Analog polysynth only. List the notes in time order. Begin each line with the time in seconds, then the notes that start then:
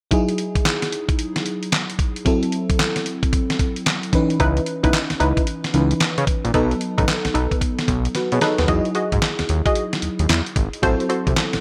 4.40 D#4 E4 B4
4.83 D#4 E4 B4
5.20 D#4 E4 B4
6.54 D#4 A4 B4
6.98 D#4 A4 B4
7.34 D#4 A4 B4
8.41 D#4 A4 B4
8.68 F#4 G#4 D#5
8.95 F#4 G#4 D#5
9.66 F#4 G#4 D#5
10.83 F#4 A4 C5
11.09 F#4 A4 C5